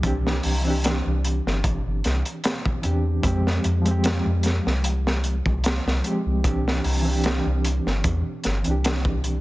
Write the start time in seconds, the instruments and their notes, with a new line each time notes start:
Already playing: sub bass C2
0.02 reed electric piano E3 C4 D4, kick, closed hi-hat
0.07 reed electric piano G4
0.27 snare
0.43 sub bass C2, open hi-hat
0.61 reed electric piano E3 C4
0.67 reed electric piano D4 G4
0.84 snare, closed hi-hat
1.06 sub bass C2
1.24 closed hi-hat
1.46 sub bass G1, snare
1.64 kick, closed hi-hat
1.86 sub bass G1
2.04 sub bass C2, snare, closed hi-hat
2.25 closed hi-hat
2.44 snare, closed hi-hat
2.65 kick
2.82 sub bass E2, reed electric piano E3 C4 D4, closed hi-hat
2.86 reed electric piano G4
3.22 sub bass F2, reed electric piano F3 G#3 C4, kick, closed hi-hat
3.27 reed electric piano G4
3.47 snare
3.64 sub bass F2, closed hi-hat
3.82 reed electric piano F3 G#3, closed hi-hat
3.88 reed electric piano C4 G4
4.04 snare, closed hi-hat
4.26 sub bass F2
4.43 snare, closed hi-hat
4.66 sub bass C2, snare
4.84 closed hi-hat
5.07 snare
5.24 closed hi-hat
5.46 sub bass C2, kick
5.64 snare, closed hi-hat
5.86 sub bass C2, snare
6.02 reed electric piano F3 G#3 C4, closed hi-hat
6.07 reed electric piano G4
6.26 sub bass C2
6.42 reed electric piano E3 C4 D4, kick, closed hi-hat
6.47 reed electric piano G4
6.68 snare
6.84 sub bass C2, open hi-hat
7.02 reed electric piano E3 C4
7.08 reed electric piano D4 G4
7.24 snare, closed hi-hat
7.46 sub bass C2
7.65 closed hi-hat
7.86 sub bass G1, snare
8.04 sub bass E2, kick, closed hi-hat
8.44 sub bass G1, snare, closed hi-hat
8.62 reed electric piano E3 C4, closed hi-hat
8.66 sub bass C2, reed electric piano D4
8.71 reed electric piano G4
8.84 snare, closed hi-hat
9.05 kick
9.24 closed hi-hat